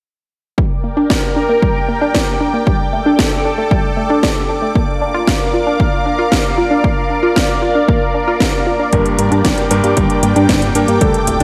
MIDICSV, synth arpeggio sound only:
0, 0, Header, 1, 2, 480
1, 0, Start_track
1, 0, Tempo, 521739
1, 534, Time_signature, 4, 2, 24, 8
1, 10520, End_track
2, 0, Start_track
2, 0, Title_t, "Synth arpeggio sound"
2, 0, Program_c, 0, 84
2, 532, Note_on_c, 0, 55, 83
2, 613, Note_off_c, 0, 55, 0
2, 771, Note_on_c, 0, 58, 76
2, 820, Note_off_c, 0, 58, 0
2, 891, Note_on_c, 0, 62, 97
2, 1006, Note_off_c, 0, 62, 0
2, 1011, Note_on_c, 0, 74, 81
2, 1126, Note_off_c, 0, 74, 0
2, 1254, Note_on_c, 0, 62, 73
2, 1368, Note_off_c, 0, 62, 0
2, 1374, Note_on_c, 0, 58, 80
2, 1454, Note_off_c, 0, 58, 0
2, 1494, Note_on_c, 0, 55, 82
2, 1574, Note_off_c, 0, 55, 0
2, 1735, Note_on_c, 0, 58, 76
2, 1782, Note_off_c, 0, 58, 0
2, 1853, Note_on_c, 0, 62, 99
2, 1967, Note_off_c, 0, 62, 0
2, 1974, Note_on_c, 0, 74, 82
2, 2088, Note_off_c, 0, 74, 0
2, 2214, Note_on_c, 0, 62, 72
2, 2328, Note_off_c, 0, 62, 0
2, 2334, Note_on_c, 0, 58, 72
2, 2414, Note_off_c, 0, 58, 0
2, 2455, Note_on_c, 0, 55, 80
2, 2534, Note_off_c, 0, 55, 0
2, 2695, Note_on_c, 0, 57, 77
2, 2743, Note_off_c, 0, 57, 0
2, 2816, Note_on_c, 0, 62, 97
2, 2929, Note_off_c, 0, 62, 0
2, 2935, Note_on_c, 0, 74, 82
2, 3049, Note_off_c, 0, 74, 0
2, 3175, Note_on_c, 0, 62, 75
2, 3289, Note_off_c, 0, 62, 0
2, 3295, Note_on_c, 0, 57, 77
2, 3374, Note_off_c, 0, 57, 0
2, 3414, Note_on_c, 0, 55, 84
2, 3494, Note_off_c, 0, 55, 0
2, 3652, Note_on_c, 0, 57, 73
2, 3701, Note_off_c, 0, 57, 0
2, 3773, Note_on_c, 0, 62, 103
2, 3887, Note_off_c, 0, 62, 0
2, 3892, Note_on_c, 0, 74, 83
2, 4007, Note_off_c, 0, 74, 0
2, 4132, Note_on_c, 0, 62, 70
2, 4247, Note_off_c, 0, 62, 0
2, 4252, Note_on_c, 0, 57, 78
2, 4333, Note_off_c, 0, 57, 0
2, 4374, Note_on_c, 0, 58, 80
2, 4454, Note_off_c, 0, 58, 0
2, 4613, Note_on_c, 0, 62, 80
2, 4662, Note_off_c, 0, 62, 0
2, 4733, Note_on_c, 0, 65, 99
2, 4847, Note_off_c, 0, 65, 0
2, 4853, Note_on_c, 0, 77, 83
2, 4967, Note_off_c, 0, 77, 0
2, 5094, Note_on_c, 0, 65, 74
2, 5208, Note_off_c, 0, 65, 0
2, 5215, Note_on_c, 0, 62, 78
2, 5294, Note_off_c, 0, 62, 0
2, 5333, Note_on_c, 0, 58, 83
2, 5413, Note_off_c, 0, 58, 0
2, 5573, Note_on_c, 0, 62, 74
2, 5621, Note_off_c, 0, 62, 0
2, 5692, Note_on_c, 0, 65, 98
2, 5807, Note_off_c, 0, 65, 0
2, 5814, Note_on_c, 0, 77, 82
2, 5928, Note_off_c, 0, 77, 0
2, 6052, Note_on_c, 0, 65, 74
2, 6167, Note_off_c, 0, 65, 0
2, 6171, Note_on_c, 0, 62, 75
2, 6253, Note_off_c, 0, 62, 0
2, 6291, Note_on_c, 0, 58, 81
2, 6373, Note_off_c, 0, 58, 0
2, 6532, Note_on_c, 0, 62, 79
2, 6581, Note_off_c, 0, 62, 0
2, 6650, Note_on_c, 0, 65, 98
2, 6766, Note_off_c, 0, 65, 0
2, 6772, Note_on_c, 0, 77, 82
2, 6887, Note_off_c, 0, 77, 0
2, 7011, Note_on_c, 0, 65, 71
2, 7126, Note_off_c, 0, 65, 0
2, 7131, Note_on_c, 0, 62, 79
2, 7212, Note_off_c, 0, 62, 0
2, 7252, Note_on_c, 0, 58, 82
2, 7333, Note_off_c, 0, 58, 0
2, 7492, Note_on_c, 0, 62, 75
2, 7541, Note_off_c, 0, 62, 0
2, 7614, Note_on_c, 0, 65, 99
2, 7728, Note_off_c, 0, 65, 0
2, 7734, Note_on_c, 0, 77, 85
2, 7848, Note_off_c, 0, 77, 0
2, 7972, Note_on_c, 0, 65, 73
2, 8087, Note_off_c, 0, 65, 0
2, 8092, Note_on_c, 0, 62, 75
2, 8173, Note_off_c, 0, 62, 0
2, 8213, Note_on_c, 0, 55, 82
2, 8293, Note_off_c, 0, 55, 0
2, 8453, Note_on_c, 0, 58, 77
2, 8501, Note_off_c, 0, 58, 0
2, 8571, Note_on_c, 0, 62, 100
2, 8686, Note_off_c, 0, 62, 0
2, 8690, Note_on_c, 0, 74, 84
2, 8806, Note_off_c, 0, 74, 0
2, 8932, Note_on_c, 0, 62, 72
2, 9047, Note_off_c, 0, 62, 0
2, 9052, Note_on_c, 0, 58, 75
2, 9133, Note_off_c, 0, 58, 0
2, 9172, Note_on_c, 0, 55, 85
2, 9253, Note_off_c, 0, 55, 0
2, 9411, Note_on_c, 0, 58, 76
2, 9461, Note_off_c, 0, 58, 0
2, 9533, Note_on_c, 0, 62, 99
2, 9647, Note_off_c, 0, 62, 0
2, 9653, Note_on_c, 0, 74, 79
2, 9767, Note_off_c, 0, 74, 0
2, 9893, Note_on_c, 0, 62, 71
2, 10007, Note_off_c, 0, 62, 0
2, 10013, Note_on_c, 0, 58, 78
2, 10094, Note_off_c, 0, 58, 0
2, 10132, Note_on_c, 0, 55, 83
2, 10213, Note_off_c, 0, 55, 0
2, 10374, Note_on_c, 0, 57, 75
2, 10422, Note_off_c, 0, 57, 0
2, 10520, End_track
0, 0, End_of_file